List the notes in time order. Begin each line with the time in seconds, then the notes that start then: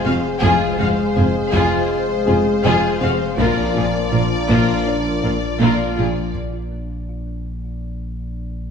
Already playing: F1 G#3 G#4 C5 F5
0.05 F1 F2 C4 F#4 F5
0.41 F1 F2 F3 G#3 F4 G#4 C5 F5, taiko
0.78 F1 F2 G#3 F#4 F5
1.16 F1 F2 C4 F4 G#4
1.52 F1 F2 F3 F4 G#4, taiko
2.25 F1 F2 C4 F4 G#4
2.64 F1 F2 F3 F4 G#4
3.01 F1 F2 C4 F#4 F5
3.38 A#1 A#2 F3 A#3 D4 F4 A#4 D5, taiko
3.75 A#1 A#2 D4 F4 G#4
4.11 A#1 A#2 F4 A#4
4.49 A#1 A#2 A#3 F4 A#4, taiko
4.86 D4 D5
5.23 A#1 A#2 F4 A#4
5.60 A#1 A#2 A#3 F4 A#4
5.96 A#1 A#2 F4 G#4
6.35 A#1